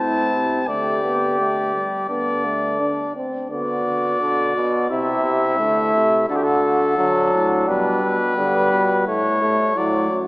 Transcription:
Already playing: A2 E4 A5
0.00 C4
0.32 C3
0.67 D3 A3 G4 D5
1.04 B3
1.39 A3
1.74 G3
2.09 D3 B3 D4 D5
2.45 A3
2.80 D4
3.16 C4
3.50 D3 B3 F#4 D5
3.85 D3
4.20 B2 D3
4.55 B2
4.90 C3 E4 E5
5.25 C3
5.59 D3 A3
5.94 C3
6.29 D3 F#4 A4
6.36 G4
6.44 A4
6.97 D3 F#3 D4
7.34 A2
7.68 B2 G3 B4
8.02 B2
8.37 D3 G3 B3
8.73 B2
9.07 A2 A3 C#5
9.42 A3
9.76 A2 F#3 D5
10.11 F#2

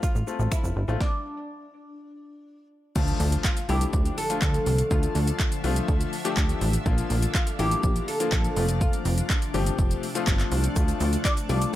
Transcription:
Already playing: A3 C4 F4
0.03 F4, kick, shaker
0.15 A1, shaker
0.27 A3 C4 F4, shaker
0.39 A1, shaker
0.52 E4, finger snap, kick, shaker
0.64 F1, shaker
0.76 G1
0.88 A1 A3 C4 F4, shaker
1.01 D4, kick, snare
2.96 D2 D3 F3 A3 D4 F4, kick, crash, impact, shaker
3.08 closed hi-hat, shaker
3.20 D2, open hi-hat, shaker
3.32 closed hi-hat, shaker
3.44 F4, kick, clap, shaker
3.57 closed hi-hat, shaker
3.69 C2 F3 A3 D4 E4 G4, open hi-hat, shaker
3.81 closed hi-hat, shaker
3.93 D2, kick, shaker
4.05 closed hi-hat, shaker
4.18 A4, open hi-hat, shaker
4.30 F3 A3 D4 F4, closed hi-hat, shaker
4.42 D2 A4, kick, clap, shaker
4.54 closed hi-hat, shaker
4.66 C2, open hi-hat, shaker
4.78 closed hi-hat, shaker
4.91 D2 F3 A3 D4 F4 E5, kick, shaker
5.03 closed hi-hat, shaker
5.15 D2, open hi-hat, shaker
5.27 closed hi-hat, shaker
5.40 kick, clap, shaker
5.52 closed hi-hat, shaker
5.64 C2 F3 A3 D4 F4, open hi-hat, shaker
5.76 closed hi-hat, shaker
5.88 D2, kick, shaker
6.01 closed hi-hat, shaker
6.13 open hi-hat, shaker
6.25 F3 A3 D4 G4, closed hi-hat, shaker
6.37 D2, kick, clap, shaker
6.49 closed hi-hat, shaker
6.61 A1, open hi-hat, shaker
6.73 closed hi-hat, shaker
6.86 A#1 F3 A#3 D4 F4, kick, shaker
6.98 closed hi-hat, shaker
7.10 A#1, open hi-hat, shaker
7.22 closed hi-hat, shaker
7.35 F4, kick, clap, shaker
7.47 closed hi-hat, shaker
7.59 A1 F3 A#3 D4 E4 G4, open hi-hat, shaker
7.71 closed hi-hat, shaker
7.83 A#1, kick, shaker
7.96 closed hi-hat, shaker
8.08 A4, open hi-hat, shaker
8.20 F3 A#3 D4 F4, closed hi-hat, shaker
8.32 A#1 A4, kick, clap, shaker
8.44 closed hi-hat, shaker
8.56 F1 C3 F3 A3 C4 F4, open hi-hat, shaker
8.69 closed hi-hat, shaker
8.81 F4, kick, shaker
8.93 closed hi-hat, shaker
9.05 F1, open hi-hat, shaker
9.18 closed hi-hat, shaker
9.30 kick, clap, shaker
9.42 closed hi-hat, shaker
9.54 G1 F3 A3 C4 G4, open hi-hat, shaker
9.66 closed hi-hat, shaker
9.78 F1, kick, shaker
9.91 closed hi-hat, shaker
10.03 open hi-hat, shaker
10.15 F3 A3 C4 F4, closed hi-hat, shaker
10.27 G1, kick, clap, shaker
10.39 clap, closed hi-hat, shaker
10.52 C2, open hi-hat, shaker
10.64 closed hi-hat, shaker
10.76 D2 D3 F3 A3 D4 F4, kick, shaker
10.88 closed hi-hat, shaker
11.00 D2, open hi-hat, shaker
11.13 closed hi-hat, shaker
11.25 D5, kick, clap, shaker
11.37 closed hi-hat, shaker
11.49 C2 F3 A3 D4 F4 D5, open hi-hat, shaker
11.61 closed hi-hat, shaker

